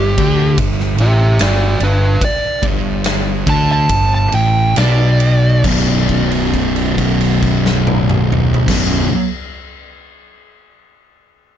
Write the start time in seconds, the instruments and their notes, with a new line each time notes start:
Already playing: fingered electric bass G1, distorted electric guitar G2, lead electric guitar G4
0.18 fingered electric bass D2, distorted electric guitar D3, kick, ride
0.58 fingered electric bass G1, distorted electric guitar G2, kick, ride
0.80 snare
0.98 fingered electric bass A1, distorted electric guitar A2, lead electric guitar G4 E5, ride
1.39 fingered electric bass G1, distorted electric guitar G2, lead electric guitar F#4 D5, snare, ride
1.80 fingered electric bass G1, distorted electric guitar G2, lead electric guitar D4, ride
1.84 lead electric guitar B4
2.21 lead electric guitar D5, kick, ride
2.63 fingered electric bass G1, distorted electric guitar G2, kick, ride
3.04 snare, ride
3.47 fingered electric bass D2, distorted electric guitar D3, lead electric guitar A5, kick, ride
3.72 lead electric guitar A5
3.89 fingered electric bass G1, distorted electric guitar G2, kick, ride
4.15 lead electric guitar A5
4.32 fingered electric bass A1, distorted electric guitar A2, lead electric guitar G5, ride
4.76 fingered electric bass B1, distorted electric guitar B2, lead electric guitar D5, snare, ride
5.20 ride
5.63 fingered electric bass B0, distorted electric guitar B1 F#2 B2, kick, crash
6.09 kick, crash
6.31 crash
6.54 kick, crash
6.76 crash
6.98 kick, crash
7.21 crash
7.42 kick, crash
7.66 snare
7.87 high tom
8.09 mid tom
8.32 mid tom
8.54 floor tom
8.67 fingered electric bass B0, distorted electric guitar B1 F#2, kick, snare, crash
8.71 distorted electric guitar B2